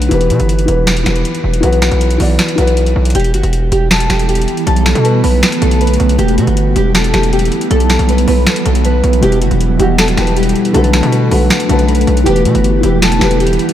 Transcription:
Already playing: D3 A3 F#4 B4
0.02 closed hi-hat
0.09 E1 E3 B3 G4, closed hi-hat
0.13 B4
0.21 closed hi-hat
0.30 B2, closed hi-hat
0.40 G1, closed hi-hat
0.49 closed hi-hat
0.59 closed hi-hat
0.66 E1 E3 B3 G4, closed hi-hat
0.70 B4
0.87 finger snap, snare, closed hi-hat
0.97 closed hi-hat
1.04 E1 E3 B3 G4, finger snap, snare, closed hi-hat
1.08 B4
1.16 closed hi-hat
1.25 closed hi-hat
1.35 closed hi-hat
1.44 E1
1.54 closed hi-hat
1.61 B1 E3 B3 F#4, closed hi-hat
1.65 B4
1.73 closed hi-hat
1.82 finger snap, snare, closed hi-hat
1.91 B1, closed hi-hat
2.01 closed hi-hat
2.10 closed hi-hat
2.18 B1 E3 B3 F#4, open hi-hat
2.22 D5
2.39 finger snap, snare, closed hi-hat
2.48 closed hi-hat
2.56 B1 E3 B3 F#4, closed hi-hat
2.60 B4
2.67 closed hi-hat
2.77 closed hi-hat
2.86 closed hi-hat
2.96 B1
3.05 closed hi-hat
3.10 closed hi-hat
3.15 E1 E3 G3 B3 E4 G4, closed hi-hat
3.20 closed hi-hat
3.24 closed hi-hat
3.34 F#1 F#4, closed hi-hat
3.43 E1, closed hi-hat
3.53 closed hi-hat
3.72 E1 G4, closed hi-hat
3.91 A4, finger snap, snare, closed hi-hat
4.00 closed hi-hat
4.10 E1 G4, finger snap, snare, closed hi-hat
4.19 closed hi-hat
4.29 G4, closed hi-hat
4.35 closed hi-hat
4.42 closed hi-hat
4.48 closed hi-hat
4.57 closed hi-hat
4.66 B1 D3 A3 F#4 A4, closed hi-hat
4.76 closed hi-hat
4.86 finger snap, snare, closed hi-hat
4.95 B2, closed hi-hat
5.04 B4, closed hi-hat
5.24 B1 B4, open hi-hat
5.43 finger snap, snare, closed hi-hat
5.52 closed hi-hat
5.62 B1 A4, closed hi-hat
5.71 closed hi-hat
5.81 B4, closed hi-hat
5.87 closed hi-hat
5.93 closed hi-hat
6.00 B1, closed hi-hat
6.09 closed hi-hat
6.18 E1 E3 G3 E4 G4, closed hi-hat
6.28 closed hi-hat
6.38 B2 F#4, closed hi-hat
6.47 G1, closed hi-hat
6.57 closed hi-hat
6.76 E1 G4, closed hi-hat
6.95 A4, finger snap, snare, closed hi-hat
7.04 closed hi-hat
7.14 E1 G4, finger snap, snare, closed hi-hat
7.23 closed hi-hat
7.33 G4, closed hi-hat
7.39 closed hi-hat
7.45 closed hi-hat
7.52 closed hi-hat
7.61 closed hi-hat
7.71 B1 E3 F#3 F#4 A4, closed hi-hat
7.80 closed hi-hat
7.90 finger snap, snare, closed hi-hat
7.99 B1, closed hi-hat
8.09 B4, closed hi-hat
8.18 closed hi-hat
8.28 B1 B4, open hi-hat
8.47 finger snap, snare, closed hi-hat
8.56 closed hi-hat
8.65 B1 A4, closed hi-hat
8.75 closed hi-hat
8.85 B4, closed hi-hat
9.04 B1, closed hi-hat
9.13 closed hi-hat
9.20 E1 B2 G3 E4 G4, closed hi-hat
9.25 B4
9.32 closed hi-hat
9.42 F#1 F#4, closed hi-hat
9.51 E1, closed hi-hat
9.61 closed hi-hat
9.77 E1 B2 G3 E4 G4, closed hi-hat
9.82 F#4
9.98 A4, finger snap, snare, closed hi-hat
10.08 closed hi-hat
10.15 E1 B2 G3 E4 G4, finger snap, snare, closed hi-hat
10.20 B4
10.27 closed hi-hat
10.36 G4, closed hi-hat
10.43 closed hi-hat
10.49 closed hi-hat
10.56 closed hi-hat
10.65 closed hi-hat
10.72 B1 D3 A3 F#4 A4, closed hi-hat
10.77 B4
10.84 closed hi-hat
10.93 finger snap, snare, closed hi-hat
11.03 B2, closed hi-hat
11.12 B4, closed hi-hat
11.29 B1 D3 A3 F#4 B4, open hi-hat
11.34 B4
11.50 finger snap, snare, closed hi-hat
11.60 closed hi-hat
11.67 B1 D3 A3 F#4 A4, closed hi-hat
11.72 B4
11.79 closed hi-hat
11.88 B4, closed hi-hat
11.95 closed hi-hat
12.01 closed hi-hat
12.07 B1, closed hi-hat
12.17 closed hi-hat
12.24 E1 E3 G3 B3 E4 G4, closed hi-hat
12.29 B4
12.36 closed hi-hat
12.45 B2 F#4, closed hi-hat
12.55 G1, closed hi-hat
12.64 closed hi-hat
12.81 E1 E3 B3 G4, closed hi-hat
12.86 B4
13.02 A4, finger snap, snare, closed hi-hat
13.12 closed hi-hat
13.19 E1 E3 B3 G4, finger snap, snare, closed hi-hat
13.23 B4
13.31 closed hi-hat
13.40 G4, closed hi-hat
13.47 closed hi-hat
13.53 closed hi-hat
13.59 closed hi-hat
13.69 closed hi-hat

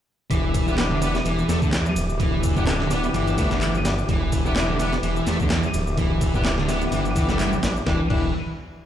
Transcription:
0.30 E1 E3 G4 E5 D6, kick, ride, shaker
0.54 kick, ride, shaker
0.67 B3 D4 E4 G4, shaker
0.78 B3 D4 E4 G4, snare, clap, ride, shaker
0.91 D3
1.01 B3 D4 E4 G4, ride, shaker
1.15 snare, shaker
1.25 E1 E3, ride, shaker
1.39 shaker
1.49 E2 A3, snare, ride, shaker
1.62 D3, kick, shaker
1.73 E3, snare, clap, ride, shaker
1.86 shaker
1.96 D1, ride, shaker
2.09 shaker
2.20 E3, kick, ride, shaker
2.43 kick, ride, shaker
2.56 B3 D4 E4 G4, kick, shaker
2.67 B3 D4 E4 G4, snare, clap, ride, shaker
2.80 D3, snare
2.91 B3 D4 E4 G4, snare, ride, shaker
3.04 ride, shaker
3.14 G1 E3, ride, shaker
3.27 ride, shaker
3.38 A3, kick, ride, shaker
3.51 D3, snare, shaker
3.61 E3, clap, ride, shaker
3.75 shaker
3.85 B3 D4 E4 G4, snare, ride, shaker
3.98 shaker
4.09 E1 E3, kick, ride, shaker
4.32 kick, ride, shaker
4.45 B3 D4 E4 G4, shaker
4.56 B3 D4 E4 G4, snare, clap, ride, shaker
4.69 D3
4.79 B3 D4 E4 G4, ride, shaker
4.93 snare, shaker
5.03 E1 E3, ride, shaker
5.16 shaker
5.26 E2 A3, snare, ride, shaker
5.40 D3, kick, shaker
5.50 E3, snare, clap, ride, shaker
5.63 shaker
5.74 D1, ride, shaker
5.87 shaker
5.97 E3, kick, ride, shaker
6.21 kick, ride, shaker
6.34 B3 D4 E4 G4, kick, shaker
6.45 B3 D4 E4 G4, snare, clap, ride, shaker
6.58 D3, snare
6.68 B3 D4 E4 G4, snare, ride, shaker
6.81 ride, shaker
6.92 G1 E3, ride, shaker
7.05 ride, shaker
7.16 E3, kick, ride, shaker
7.29 F#1 A3, snare, shaker
7.39 G3, clap, ride, shaker
7.53 shaker
7.63 A1 B3 D4 E4 G4, snare, ride, shaker
7.77 shaker
7.86 E1 E3 B3 D4 E4 G4 G5, kick, snare
8.10 E1 E3 B3 D4 E4 G4, kick, crash

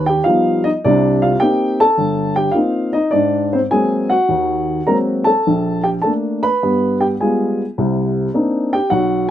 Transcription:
Already playing: D#2
0.06 G4 G5
0.24 F3 G3 B3 D#4 F4 F5
0.64 D#4 D#5
0.84 C2 C3 D4 D5
1.22 F4 F5
1.40 A#3 C4 D#4 G4 G5
1.80 A4 A5
1.98 G1
2.36 G4 G5
2.52 A#3 F4 F5
2.56 C4 D#4
2.93 D#4 D#5
3.11 G#2 D4 D5
3.53 C4 C5
3.71 F#3 G#3 A#3 C4 G#4 G#5
4.10 F#4 F#5
4.29 D#2 D#3
4.87 F#3 G#3 A#3 C4 A#4 A#5
5.24 A4 A5
5.47 A#1
5.84 G4 G5
6.02 A3 A#3 D4 A4 A5
6.43 B4 B5
6.63 G2 B3
7.01 G4 G5
7.20 G3 G#3 B3 F4 G#4 G#5
7.78 C2 C3
8.34 A#3 C4 D4 D#4
8.73 G4 G5
8.90 B1 F#4 F#5

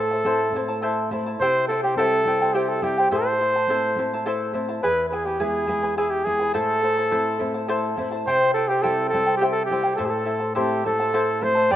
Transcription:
Already playing: A2 E4 A4 C5 E5
0.11 E4 C5 A5
0.24 A3 C4 E4 A4 C5 E5 A5
0.52 A3 C4 E4 E5
0.56 C5 A5
0.68 E4 C5 A5
0.82 E4 A4 C5 E5 A5
1.11 A3 C4 E4 C5 E5 A5
1.26 E4 C5 A5
1.40 C3 E4 G4 C5 E5 G5
1.68 E4 A4 C5 E5 G5
1.83 E4 G4 C5 G5
1.95 G3 C4 E4 G4 A4 C5 E5 G5
2.25 G3 C4 E4 C5 E5 G5
2.41 E4 C5 G5
2.54 E4 G4 C5 E5 G5
2.69 A4
2.82 G3 C4 E4 G4 C5 E5 G5
2.98 E4 C5 G5
3.11 A2 E4 A4 C5 E5 A5
3.40 E4 C5 E5 A5
3.56 E4 C5 A5
3.67 A3 C4 E4 A4 C5 E5 A5
3.95 A3 C4 E4 C5 E5 A5
4.14 E4 C5 A5
4.26 E4 A4 C5 E5 A5
4.53 A3 C4 E4 C5 E5 A5
4.69 E4 C5 A5
4.83 E2 E4 G#4 B4 E5 G#5
5.09 E4 G#4 B4 E5
5.13 G#5
5.25 E4 G4 B4 G#5
5.40 G#3 B3 E4 G#4 B4 E5 G#5
5.67 G#3 B3 E4 B4 E5 G#5
5.83 E4 B4 G#5
5.97 E4 G#4 B4 E5 G#5
6.10 G4
6.25 G#3 B3 E4 G#4 B4 E5 G#5
6.39 E4 B4 G#5
6.54 A2 E4 A4 C5 E5 A5
6.82 E4 C5 E5 A5
6.97 E4 C5 A5
7.11 A3 C4 E4 A4 C5 E5 A5
7.39 A3 C4 E4 C5 E5 A5
7.54 E4 C5 A5
7.68 E4 A4 C5 E5 A5
7.97 A3 C4 E4 C5 E5 A5
8.11 E4 C5 A5
8.27 C3 E4 G4 C5 E5 G5
8.54 E4 A4 C5 E5 G5
8.68 E4 G4 C5 G5
8.82 G3 C4 E4 G4 A4 C5 E5 G5
9.09 A4 E5
9.13 G3 C4 E4 C5 G5
9.26 E4 C5 G5
9.37 G4
9.41 E4 G4 C5 E5 G5
9.52 A4
9.66 G4
9.70 G3 C4 E4 C5 E5 G5
9.83 E4 C5 G5
9.96 E4 A4 C5 E5 A5
10.00 A2
10.05 G4
10.10 A4
10.25 E4 C5 E5 A5
10.40 E4 C5 A5
10.55 A3 C4 E4 G4 A4 C5 E5 A5
10.85 A3 C4 E4 A4 C5 E5 A5
10.99 E4 C5 A5
11.13 E4 A4 C5 E5 A5
11.41 A3 C4 E4 C5 E5 A5
11.55 E4 C5 A5
11.71 G2 G4 B4 D5 G5 B5

